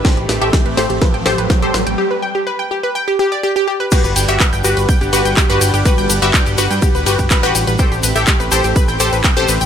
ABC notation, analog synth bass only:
X:1
M:4/4
L:1/16
Q:1/4=124
K:G
V:1 name="Analog synth bass" clef=bass
z A,,, A,,, A,,, z A,,, A,,, A,,, z A,,, A,,, A,,, z A,,, A,,, A,,, | z16 | z G,,, G,,, G,,, z G,,, G,,, G,,, z G,,, G,,, G,,, z G,,, G,,, G,,, | z G,,, G,,, G,,, z G,,, G,,, G,, z D,,, G,,, G,,, z A,,, A,,, A,,, |
z A,,, A,,, A,,, z A,,, A,,, A,,, z A,,, A,,, A,,, z A,,, A,,, A,,, |]